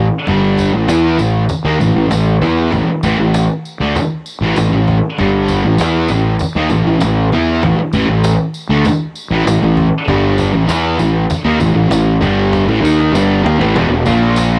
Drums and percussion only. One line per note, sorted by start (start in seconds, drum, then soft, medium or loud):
0.27 cajon bass loud
0.58 cajon bass medium
0.58 tambourine medium
0.88 cajon slap loud
0.88 tambourine loud
1.19 tambourine medium
1.49 cajon bass loud
1.49 tambourine medium
1.80 cajon bass medium
1.80 tambourine medium
2.11 cajon slap loud
2.11 tambourine medium
2.42 cajon bass medium
2.42 tambourine soft
2.72 cajon bass loud
2.72 tambourine soft
3.03 cajon bass medium
3.03 tambourine medium
3.34 cajon slap loud
3.34 tambourine loud
3.65 tambourine medium
3.96 cajon bass loud
3.96 tambourine medium
4.26 tambourine medium
4.56 cajon slap loud
4.56 tambourine medium
4.88 cajon bass medium
5.18 cajon bass loud
5.48 cajon bass medium
5.48 tambourine medium
5.78 cajon slap loud
5.78 tambourine medium
6.08 tambourine medium
6.39 cajon bass loud
6.39 tambourine medium
6.69 tambourine medium
7.00 cajon slap loud
7.00 tambourine medium
7.32 cajon bass medium
7.63 cajon bass loud
7.93 cajon bass medium
7.93 tambourine medium
8.24 cajon slap loud
8.24 tambourine loud
8.54 tambourine medium
8.85 cajon bass loud
8.85 tambourine medium
9.15 tambourine medium
9.47 cajon slap loud
9.47 tambourine medium
9.77 cajon bass medium
10.08 cajon bass loud
10.38 cajon bass medium
10.38 tambourine medium
10.69 cajon slap loud
10.69 tambourine loud
10.99 tambourine medium
11.30 cajon bass loud
11.30 tambourine medium
11.60 cajon bass medium
11.60 tambourine medium
11.91 cajon slap loud
11.91 tambourine loud
12.22 cajon bass medium
12.22 tambourine soft
12.53 cajon bass loud
12.53 cajon slap medium
12.53 tambourine soft
12.69 cajon slap medium
12.85 tambourine medium
13.00 cajon slap medium
13.15 cajon slap medium
13.15 tambourine loud
13.46 cajon slap loud
13.61 cajon slap medium
13.76 cajon bass loud
13.76 cajon slap loud
14.05 cajon bass loud
14.05 tambourine medium
14.36 cajon slap loud
14.36 tambourine loud